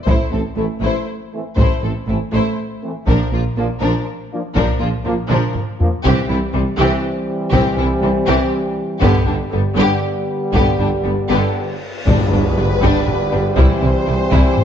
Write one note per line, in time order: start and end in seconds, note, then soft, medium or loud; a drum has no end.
0.07 0.17 A1 medium
0.07 0.15 A1 medium
0.07 0.15 A2 medium
0.07 0.29 A3 medium
0.07 0.31 E4 medium
0.07 0.31 C5 medium
0.07 taiko medium
0.30 0.42 A1 soft
0.30 0.40 A1 soft
0.30 0.40 A2 soft
0.30 0.38 A3 soft
0.30 0.40 C4 soft
0.30 0.41 A4 soft
0.56 0.67 A1 soft
0.56 0.65 A1 soft
0.56 0.64 A2 soft
0.56 0.66 E3 medium
0.56 0.64 A3 soft
0.56 0.65 A3 soft
0.56 0.66 A3 medium
0.56 0.66 C4 medium
0.56 0.65 E4 soft
0.56 0.66 A4 medium
0.81 0.92 A1 medium
0.81 0.90 A1 medium
0.81 0.89 A2 medium
0.81 1.05 A3 medium
0.81 1.06 E4 medium
0.81 1.07 C5 medium
1.33 1.42 E3 medium
1.33 1.42 A3 soft
1.33 1.43 C4 medium
1.33 1.43 A4 medium
1.57 1.67 A1 medium
1.57 1.65 A1 medium
1.57 1.65 A2 medium
1.57 1.81 A3 medium
1.57 1.81 E4 medium
1.57 1.81 C5 medium
1.57 taiko medium
1.82 1.93 A1 soft
1.82 1.92 A1 medium
1.82 1.91 A2 soft
1.82 1.90 A3 soft
1.82 1.91 C4 soft
1.82 1.91 A4 soft
2.07 2.18 A1 soft
2.07 2.17 A1 soft
2.07 2.15 A2 soft
2.07 2.17 E3 medium
2.07 2.15 A3 soft
2.07 2.16 A3 soft
2.07 2.17 A3 soft
2.07 2.18 C4 medium
2.07 2.16 E4 soft
2.07 2.18 A4 medium
2.32 2.43 A1 medium
2.32 2.41 A1 medium
2.32 2.41 A2 medium
2.32 2.56 A3 medium
2.32 2.56 E4 medium
2.32 2.56 C5 medium
2.83 2.92 E3 medium
2.83 2.92 A3 soft
2.83 2.91 C4 medium
2.83 2.92 A4 medium
3.06 3.17 A#1 medium
3.06 3.16 A#1 medium
3.06 3.15 A#2 medium
3.06 3.30 F3 medium
3.06 3.31 D4 medium
3.06 3.31 A#4 medium
3.06 taiko medium
3.32 3.42 A#1 medium
3.32 3.40 A#2 soft
3.32 3.41 F3 soft
3.32 3.41 A#3 soft
3.32 3.41 F4 soft
3.57 3.66 A#1 medium
3.57 3.68 A#1 soft
3.57 3.65 A#2 soft
3.57 3.65 F3 soft
3.57 3.67 F3 medium
3.57 3.66 A#3 medium
3.57 3.67 A#3 medium
3.57 3.65 D4 soft
3.57 3.68 D4 medium
3.57 3.67 F4 medium
3.81 3.90 A#1 medium
3.81 3.92 A#1 medium
3.81 3.89 A#2 medium
3.81 4.05 F3 medium
3.81 4.05 D4 medium
3.81 4.05 A#4 medium
4.33 4.42 F3 medium
4.33 4.41 A#3 medium
4.33 4.41 D4 medium
4.33 4.41 F4 medium
4.55 4.66 A#1 medium
4.55 4.64 A#1 medium
4.55 4.64 A#2 medium
4.55 4.79 F3 medium
4.55 4.79 D4 medium
4.55 4.79 A#4 medium
4.55 taiko medium
4.80 4.91 A#1 medium
4.80 4.89 A#1 medium
4.80 4.88 A#2 soft
4.80 4.89 F3 soft
4.80 4.88 A#3 soft
4.80 4.88 F4 medium
5.05 5.16 A#1 medium
5.05 5.14 A#1 medium
5.05 5.13 A#2 medium
5.05 5.13 F3 medium
5.05 5.15 F3 medium
5.05 5.13 A#3 medium
5.05 5.15 A#3 medium
5.05 5.13 D4 soft
5.05 5.15 D4 medium
5.05 5.16 F4 medium
5.29 5.41 A#1 medium
5.29 5.39 A#1 medium
5.29 5.37 A#2 medium
5.29 5.53 F3 medium
5.29 5.53 D4 medium
5.29 5.53 A#4 medium
5.29 taiko mid medium
5.55 taiko low-mid medium
5.79 5.90 F3 medium
5.79 5.90 A#3 medium
5.79 5.89 D4 medium
5.79 5.88 F4 medium
5.79 taiko low medium
6.04 6.14 C2 medium
6.04 6.12 C3 medium
6.04 6.28 E3 medium
6.04 8.98 E3 medium
6.04 8.98 G3 medium
6.04 6.29 C4 medium
6.04 8.99 C4 medium
6.04 6.28 G4 medium
6.04 8.99 G4 medium
6.04 taiko medium
6.29 6.39 C2 medium
6.29 6.38 C2 medium
6.29 6.38 C3 medium
6.29 6.37 E3 medium
6.29 6.37 G3 medium
6.29 6.37 E4 medium
6.53 6.64 C2 medium
6.53 6.63 C2 medium
6.53 6.63 C3 medium
6.53 6.62 E3 medium
6.53 6.62 G3 medium
6.53 6.61 C4 medium
6.78 6.89 C2 medium
6.78 6.87 C2 medium
6.78 6.87 C3 medium
6.78 7.02 E3 medium
6.78 7.02 C4 medium
6.78 7.02 G4 medium
7.52 7.60 C2 loud
7.52 7.63 C2 loud
7.52 7.60 C3 medium
7.52 7.76 E3 medium
7.52 7.76 C4 medium
7.52 7.76 G4 medium
7.52 taiko loud
7.77 7.85 C2 medium
7.77 7.87 C2 medium
7.77 7.86 C3 medium
7.77 7.85 E3 medium
7.77 7.86 G3 medium
7.77 7.85 E4 medium
8.02 8.12 C2 medium
8.02 8.10 C2 medium
8.02 8.11 C3 medium
8.02 8.10 E3 medium
8.02 8.10 G3 medium
8.02 8.11 C4 medium
8.27 8.37 C2 medium
8.27 8.36 C2 medium
8.27 8.36 C3 medium
8.27 8.50 E3 medium
8.27 8.50 C4 medium
8.27 8.51 G4 medium
9.01 9.10 G1 loud
9.01 9.12 G1 medium
9.01 9.09 G2 medium
9.01 9.25 D3 medium
9.01 11.78 D3 medium
9.01 11.78 G3 medium
9.01 9.25 B3 medium
9.01 11.78 B3 medium
9.01 9.25 G4 medium
9.01 11.78 G4 medium
9.01 taiko loud
9.26 9.35 G1 medium
9.26 9.38 G1 medium
9.26 9.35 G2 medium
9.26 9.34 D3 medium
9.26 9.35 G3 soft
9.26 9.35 D4 medium
9.50 9.63 G1 medium
9.50 9.61 G1 medium
9.50 9.61 G2 medium
9.50 9.58 D3 medium
9.50 9.61 G3 medium
9.50 9.60 B3 medium
9.76 9.85 G1 medium
9.76 9.88 G1 medium
9.76 9.87 G2 medium
9.76 10.00 D3 medium
9.76 10.01 B3 medium
9.76 10.02 G4 medium
10.53 10.62 G1 medium
10.53 10.64 G1 medium
10.53 10.63 G2 medium
10.53 10.77 D3 medium
10.53 10.77 B3 medium
10.53 10.78 G4 medium
10.53 taiko medium
10.53 cymbal swell medium
10.78 10.90 G1 medium
10.78 10.88 G1 medium
10.78 10.89 G2 medium
10.78 10.88 D3 medium
10.78 10.86 G3 medium
10.78 10.88 D4 medium
11.03 11.14 G1 soft
11.03 11.13 G1 medium
11.03 11.14 G2 medium
11.03 11.14 D3 medium
11.03 11.11 G3 medium
11.03 11.13 B3 soft
11.29 11.40 G1 medium
11.29 11.39 G1 medium
11.29 11.39 G2 medium
11.29 11.54 D3 medium
11.29 11.54 B3 medium
11.29 11.54 G4 medium
12.06 12.17 G1 medium
12.06 12.15 G1 medium
12.06 12.15 G2 medium
12.06 12.79 G2 loud
12.06 13.54 D3 medium
12.06 12.31 G3 medium
12.06 14.64 G3 medium
12.06 13.53 B3 medium
12.06 12.31 D4 medium
12.06 14.64 G4 medium
12.06 13.53 B4 medium
12.06 taiko loud
12.06 tam-tam medium
12.06 sub drop medium
12.32 12.42 G1 medium
12.32 12.41 G1 medium
12.32 12.40 G2 medium
12.32 12.41 G3 medium
12.32 12.40 D4 medium
12.56 12.68 G1 medium
12.56 12.66 G1 medium
12.56 12.65 G2 medium
12.56 12.66 G3 medium
12.56 12.64 D4 medium
12.81 12.93 G1 medium
12.81 12.91 G1 medium
12.81 12.89 G2 medium
12.81 13.06 G3 medium
12.81 13.06 D4 medium
12.81 taiko medium
13.08 taiko low-mid medium
13.32 13.42 G1 medium
13.32 13.40 G2 medium
13.32 13.40 G3 medium
13.32 13.40 D4 medium
13.56 13.65 C2 medium
13.56 13.67 C2 medium
13.56 13.65 C3 medium
13.56 14.64 E3 medium
13.56 13.80 G3 medium
13.56 14.64 C4 medium
13.56 13.79 E4 medium
13.56 14.64 C5 medium
13.56 taiko loud
13.81 13.92 C2 medium
13.81 13.90 C3 medium
13.81 13.90 G3 medium
13.81 13.89 E4 medium
14.06 14.17 C2 medium
14.06 14.16 C2 medium
14.06 14.16 C3 medium
14.06 14.15 G3 medium
14.06 14.14 E4 medium
14.31 14.42 C2 medium
14.31 14.40 C2 medium
14.31 14.40 C3 medium
14.31 14.55 G3 medium
14.31 14.55 E4 medium
14.31 taiko medium
14.57 taiko low-mid medium